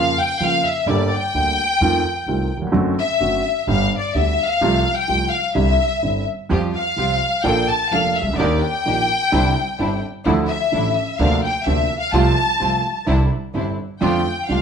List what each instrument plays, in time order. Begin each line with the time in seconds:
Already playing: grand piano F2 C#3 F3 A#3 F4, upright bass F2, violin section F5
0.19 violin section G5
0.40 grand piano F2 C#3 F3 A#3 F4, upright bass F2, violin section F5
0.66 violin section E5
0.86 upright bass G1, grand piano G1 G2 D3 G3 A#3 G4, violin section D5
1.15 violin section G5
1.34 upright bass D2, grand piano D2 D3 G3 A#3 G4
1.81 upright bass F2, grand piano F2 D#3 F3 A3 C4 F4
2.27 upright bass C2, grand piano C2 C3 D#3 A3 C4 F4
2.57 grand piano D#2
2.62 grand piano E2
2.67 grand piano F2
2.72 upright bass F#1, grand piano F#2 D3 F#3 A3 C4 F#4
3.00 violin section E5
3.20 upright bass F#1, grand piano F#2 D3 F#3 A3 C4 F#4
3.67 upright bass G1, grand piano G1 G2 D3 G3 B3 G4, violin section F5
3.98 violin section D5
4.14 upright bass D2, grand piano D2 D3 G3 B3 G4, violin section E5
4.45 violin section F5
4.61 upright bass C2, grand piano C2 C3 F3 A3 F4
4.95 violin section G5
5.08 grand piano C2 C3 F3 A3 F4, upright bass C2
5.31 violin section F5
5.54 grand piano C2 C3 D3 G3 C4 E4, upright bass C2, violin section E5
6.02 grand piano G1 G2 D3 G3 C4 E4, upright bass G1
6.49 grand piano F2 F3 G3 C4 G4, upright bass F2, string section C4 F4 G4
6.74 violin section F5
6.96 grand piano C2 C3 F3 G3 C4 G4, upright bass C2, string section C4 F4 G4
7.44 grand piano A#1 A#2 F3 A#3 D4 A4, upright bass A#1, string section A#3 D4 A4, violin section G5
7.69 violin section A5
7.91 upright bass F1, grand piano F1 F2 F3 A#3 D4 A4, string section A#3 D4 A4, violin section F5
8.15 violin section E5
8.21 grand piano C2, upright bass C2
8.27 grand piano C#2, upright bass C#2
8.33 grand piano D2, upright bass D2, violin section D5
8.38 grand piano D#2 D#3 A#3 D4 G4, upright bass D#2, string section D4 D#4 G4
8.62 violin section G5
8.85 grand piano A#1 A#2 D#3 A#3 D4 G4, upright bass A#1, string section D4 D#4 G4
9.32 grand piano C2 C3 D3 G3 C4 E4, upright bass C2, string section C4 D4 E4
9.78 upright bass G1, grand piano G1 G2 D3 G3 C4 E4, string section C4 D4 E4
10.25 upright bass D2, grand piano D2 D3 F3 A3 E4, string section F3 D4 E4
10.48 violin section E5
10.72 grand piano A1 A2 D3 F3 A3 E4, upright bass A1, string section F3 D4 E4
11.17 upright bass D2, grand piano D2 C3 D3 F3 A#3 D4, string section A#3 C4 D4, violin section F5
11.42 violin section G5
11.64 upright bass D2, grand piano D2 C3 D3 F3 A#3 D4, string section A#3 C4 D4, violin section E5
11.99 violin section F5
12.11 upright bass C2, grand piano C2 C3 F3 A3 F4, string section A3 C4 F4, violin section A5
12.59 upright bass C2, grand piano C2 C3 F3 A3 F4, string section A3 C4 F4
13.06 grand piano C2 C3 D3 G3 C4 E4, upright bass C2, string section C4 D4 E4
13.54 upright bass G1, grand piano G1 G2 D3 G3 C4 E4, string section C4 D4 E4
14.01 grand piano F2 D3 F3 A3 C4 F4, upright bass F2, string section A3 D4 F4, violin section G5
14.49 upright bass C2, grand piano C2 C3 D3 A3 C4 F4, string section A3 D4 F4, violin section F5